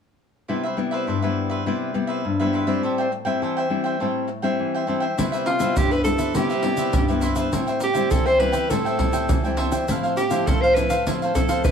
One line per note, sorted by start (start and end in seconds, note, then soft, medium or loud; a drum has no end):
0.48 1.04 C3 medium
0.48 0.66 G3 medium
0.48 0.66 B3 medium
0.48 0.62 E4 soft
0.48 0.66 E4 medium
0.48 0.62 B4 soft
0.48 0.62 C5 soft
0.48 0.62 E5 soft
0.63 0.77 B4 medium
0.63 0.77 C5 soft
0.63 0.77 E5 medium
0.77 1.16 G3 medium
0.77 1.17 B3 medium
0.77 1.17 E4 medium
0.77 muted cavaquinho stroke soft
0.91 1.06 B4 medium
0.91 1.06 C5 medium
0.91 1.05 E5 medium
1.07 1.63 G2 medium
1.07 1.20 E4 soft
1.07 1.21 B4 medium
1.07 1.21 C5 soft
1.07 1.21 E5 medium
1.22 1.61 G3 medium
1.22 1.62 B3 medium
1.22 1.62 E4 medium
1.22 1.50 B4 medium
1.22 1.50 C5 soft
1.22 1.48 E5 medium
1.50 1.64 B4 medium
1.50 1.65 C5 soft
1.50 1.64 E5 medium
1.66 2.21 C3 medium
1.66 1.91 G3 medium
1.66 1.91 B3 medium
1.66 1.93 E4 soft
1.66 1.91 E4 medium
1.66 1.94 B4 soft
1.66 1.94 C5 soft
1.66 1.94 E5 medium
1.94 2.22 G3 medium
1.94 2.22 B3 medium
1.94 2.23 E4 medium
1.94 muted cavaquinho stroke soft
2.07 2.37 B4 medium
2.07 2.38 C5 medium
2.07 2.37 E5 medium
2.25 2.80 G2 medium
2.39 2.64 G3 medium
2.39 2.64 B3 medium
2.39 2.64 E4 medium
2.39 2.53 B4 medium
2.39 2.53 C5 soft
2.39 2.53 E5 medium
2.53 2.67 E4 soft
2.53 2.67 B4 medium
2.53 2.67 C5 soft
2.53 2.66 E5 soft
2.67 3.07 G3 medium
2.67 3.07 C4 medium
2.67 3.07 E4 medium
2.67 2.82 B4 medium
2.67 2.82 C5 medium
2.67 2.81 E5 medium
2.83 3.39 A2 medium
2.83 2.97 A4 soft
2.83 2.97 C5 soft
2.83 2.97 E5 soft
2.83 2.97 G5 soft
2.98 3.11 C5 medium
2.98 3.11 E5 medium
2.98 3.11 G5 medium
3.12 muted cavaquinho stroke soft
3.25 3.65 G3 medium
3.25 3.65 C4 medium
3.25 3.66 E4 medium
3.25 3.41 C5 medium
3.25 3.40 E5 medium
3.25 3.39 G5 medium
3.42 3.97 E3 medium
3.42 3.55 A4 soft
3.42 3.56 C5 soft
3.42 3.56 E5 medium
3.42 3.55 G5 medium
3.57 3.85 C5 medium
3.57 3.84 E5 medium
3.57 3.83 G5 medium
3.70 3.95 G3 medium
3.70 3.95 C4 soft
3.70 3.96 E4 medium
3.84 3.99 C5 medium
3.84 3.99 E5 medium
3.84 3.98 G5 medium
4.00 4.56 A2 medium
4.00 4.28 G3 soft
4.00 4.28 C4 soft
4.00 4.29 E4 medium
4.00 4.26 A4 soft
4.00 4.27 C5 medium
4.00 4.27 E5 soft
4.00 4.28 G5 medium
4.27 muted cavaquinho stroke soft
4.42 4.83 G3 medium
4.42 4.83 C4 medium
4.42 4.83 E4 medium
4.42 4.73 C5 medium
4.42 4.72 E5 medium
4.42 4.72 G5 medium
4.59 5.15 E3 medium
4.74 4.87 C5 soft
4.74 4.87 E5 medium
4.74 4.88 G5 medium
4.87 5.05 G3 medium
4.87 5.06 C4 medium
4.87 5.06 E4 medium
4.87 5.01 A4 medium
4.87 5.01 C5 medium
4.87 5.01 E5 medium
4.87 4.99 G5 medium
5.00 5.16 C5 medium
5.00 5.16 E5 medium
5.00 5.15 G5 medium
5.17 5.74 C3 medium
5.17 5.57 G3 medium
5.17 5.57 B3 soft
5.17 5.31 E4 soft
5.17 5.57 E4 medium
5.17 5.32 B4 medium
5.17 5.32 C5 soft
5.17 5.31 E5 medium
5.17 pandeiro medium
5.17 shaker medium
5.17 surdo medium
5.32 5.46 B4 medium
5.32 5.45 C5 medium
5.32 5.46 E5 medium
5.32 pandeiro soft
5.32 shaker soft
5.46 5.79 F4 medium
5.46 muted cavaquinho stroke soft
5.46 pandeiro medium
5.59 6.00 G3 medium
5.59 6.01 B3 medium
5.59 6.01 E4 medium
5.59 5.75 B4 medium
5.59 5.75 C5 medium
5.59 5.74 E5 medium
5.59 pandeiro medium
5.59 shaker medium
5.76 6.33 G2 medium
5.76 5.90 E4 soft
5.76 5.93 G4 medium
5.76 5.91 B4 medium
5.76 5.90 C5 soft
5.76 5.90 E5 medium
5.76 pandeiro medium
5.76 shaker medium
5.76 surdo medium
5.91 6.03 B4 medium
5.91 6.18 B4 medium
5.91 6.19 C5 medium
5.91 6.17 E5 medium
5.91 pandeiro soft
5.91 shaker soft
6.04 6.30 G3 medium
6.04 6.31 B3 medium
6.04 6.31 E4 medium
6.04 6.32 A4 medium
6.04 pandeiro medium
6.04 shaker medium
6.18 6.34 B4 medium
6.18 6.34 C5 medium
6.18 6.33 E5 medium
6.18 pandeiro medium
6.18 shaker medium
6.34 6.91 C3 medium
6.34 6.53 G3 soft
6.34 6.53 B3 medium
6.34 6.48 E4 soft
6.34 6.53 E4 medium
6.34 7.20 G4 medium
6.34 6.49 B4 medium
6.34 6.49 C5 soft
6.34 6.49 E5 medium
6.34 pandeiro medium
6.34 shaker medium
6.34 surdo medium
6.50 6.64 B4 medium
6.50 6.63 C5 medium
6.50 6.63 E5 medium
6.50 pandeiro soft
6.50 shaker soft
6.63 7.03 G3 medium
6.63 7.04 B3 medium
6.63 7.04 E4 medium
6.63 muted cavaquinho stroke soft
6.63 pandeiro medium
6.77 7.07 B4 medium
6.77 7.08 C5 medium
6.77 7.07 E5 medium
6.77 pandeiro medium
6.77 shaker medium
6.93 7.50 G2 medium
6.93 pandeiro medium
6.93 shaker medium
6.93 surdo loud
7.08 7.48 G3 medium
7.08 7.49 B3 medium
7.08 7.49 E4 medium
7.08 7.23 B4 soft
7.08 7.22 C5 soft
7.08 7.22 E5 soft
7.08 pandeiro soft
7.08 shaker soft
7.21 7.36 E4 medium
7.21 7.36 B4 medium
7.21 7.37 C5 medium
7.21 7.35 E5 medium
7.21 pandeiro medium
7.21 shaker medium
7.36 7.51 B4 medium
7.36 7.51 C5 medium
7.36 7.51 E5 medium
7.36 pandeiro medium
7.36 shaker medium
7.52 8.09 A2 medium
7.52 7.80 G3 medium
7.52 7.80 C4 medium
7.52 7.81 E4 medium
7.52 7.66 A4 soft
7.52 7.66 C5 soft
7.52 7.67 E5 soft
7.52 7.65 G5 soft
7.52 pandeiro medium
7.52 shaker medium
7.52 surdo medium
7.67 7.80 C5 medium
7.67 7.80 E5 medium
7.67 7.80 G5 medium
7.67 pandeiro soft
7.67 shaker soft
7.80 8.13 G4 medium
7.80 muted cavaquinho stroke soft
7.80 pandeiro medium
7.80 shaker medium
7.93 8.35 G3 medium
7.93 8.36 C4 medium
7.93 8.36 E4 medium
7.93 8.10 C5 medium
7.93 8.09 E5 medium
7.93 8.08 G5 medium
7.93 pandeiro medium
7.93 shaker medium
8.10 8.68 E3 medium
8.10 8.24 A4 medium
8.10 8.28 A4 medium
8.10 8.25 C5 medium
8.10 8.25 E5 soft
8.10 8.24 G5 medium
8.10 pandeiro medium
8.10 shaker medium
8.10 surdo medium
8.25 8.41 C5 medium
8.25 8.53 C5 medium
8.25 8.52 E5 medium
8.25 8.51 G5 medium
8.25 pandeiro soft
8.25 shaker soft
8.40 8.66 G3 medium
8.40 8.66 C4 medium
8.40 8.66 E4 medium
8.40 8.71 B4 loud
8.40 pandeiro medium
8.52 8.68 C5 soft
8.52 8.68 E5 medium
8.52 8.67 G5 medium
8.52 pandeiro medium
8.52 shaker medium
8.70 9.27 A2 medium
8.70 8.95 G3 medium
8.70 8.96 C4 medium
8.70 8.96 E4 medium
8.70 9.58 A4 medium
8.70 8.84 A4 soft
8.70 8.84 C5 soft
8.70 8.85 E5 soft
8.70 8.84 G5 medium
8.70 pandeiro medium
8.70 shaker medium
8.70 surdo medium
8.85 8.98 C5 medium
8.85 8.98 E5 medium
8.85 8.98 G5 medium
8.85 pandeiro soft
8.85 shaker soft
8.99 9.39 G3 medium
8.99 9.39 C4 medium
8.99 9.40 E4 medium
8.99 muted cavaquinho stroke soft
8.99 pandeiro medium
8.99 surdo medium
9.13 9.43 C5 medium
9.13 9.42 E5 medium
9.13 9.42 G5 medium
9.13 pandeiro medium
9.13 shaker medium
9.29 9.85 E3 medium
9.29 pandeiro medium
9.29 shaker medium
9.29 surdo loud
9.44 9.84 G3 medium
9.44 9.84 C4 medium
9.44 9.85 E4 medium
9.44 9.56 C5 soft
9.44 9.57 E5 soft
9.44 9.57 G5 soft
9.44 pandeiro soft
9.44 shaker soft
9.57 9.71 A4 medium
9.57 9.72 C5 medium
9.57 9.72 E5 medium
9.57 9.70 G5 medium
9.57 pandeiro medium
9.72 9.87 C5 medium
9.72 9.87 E5 medium
9.72 9.86 G5 medium
9.72 pandeiro medium
9.72 shaker medium
9.88 10.44 A2 medium
9.88 10.16 F3 medium
9.88 10.16 C4 medium
9.88 10.02 E4 soft
9.88 10.16 E4 medium
9.88 10.02 A4 medium
9.88 10.03 C5 soft
9.88 10.02 F5 medium
9.88 pandeiro medium
9.88 shaker medium
9.88 surdo medium
10.03 10.17 A4 medium
10.03 10.17 C5 medium
10.03 10.16 F5 medium
10.03 pandeiro soft
10.03 shaker soft
10.17 10.48 G4 medium
10.17 muted cavaquinho stroke soft
10.17 pandeiro medium
10.17 shaker medium
10.30 10.71 F3 medium
10.30 10.71 C4 medium
10.30 10.71 E4 medium
10.30 10.46 A4 medium
10.30 10.45 C5 medium
10.30 10.45 F5 medium
10.30 pandeiro medium
10.30 shaker medium
10.47 11.03 A2 medium
10.47 10.61 E4 soft
10.47 10.63 A4 medium
10.47 10.61 A4 medium
10.47 10.61 C5 medium
10.47 10.62 F5 medium
10.47 pandeiro medium
10.47 shaker medium
10.47 surdo medium
10.61 10.76 C5 medium
10.61 10.90 C5 medium
10.61 10.89 F5 medium
10.61 pandeiro soft
10.61 shaker soft
10.66 10.91 A4 medium
10.74 10.93 F3 medium
10.74 10.94 C4 medium
10.74 10.94 E4 medium
10.74 11.05 B4 medium
10.74 pandeiro medium
10.74 shaker medium
10.90 11.05 A4 medium
10.90 11.04 C5 medium
10.90 11.04 F5 medium
10.90 pandeiro medium
10.90 shaker medium
11.06 11.62 A2 medium
11.06 11.31 F3 medium
11.06 11.31 C4 medium
11.06 11.19 E4 medium
11.06 11.31 E4 medium
11.06 11.20 A4 soft
11.06 11.20 C5 medium
11.06 11.21 F5 medium
11.06 pandeiro medium
11.06 shaker medium
11.06 surdo medium
11.22 11.35 A4 medium
11.22 11.35 C5 medium
11.22 11.35 F5 medium
11.22 pandeiro soft
11.22 shaker soft
11.34 11.62 F3 medium
11.34 11.63 C4 medium
11.34 11.63 E4 medium
11.34 11.62 A4 medium
11.34 muted cavaquinho stroke soft
11.34 pandeiro medium
11.34 shaker medium
11.34 surdo medium
11.49 11.71 A4 medium
11.49 11.71 C5 medium
11.49 11.71 F5 medium
11.49 pandeiro medium
11.49 shaker medium
11.64 11.71 A2 medium
11.64 11.71 B4 medium
11.64 pandeiro medium
11.64 shaker medium
11.64 surdo loud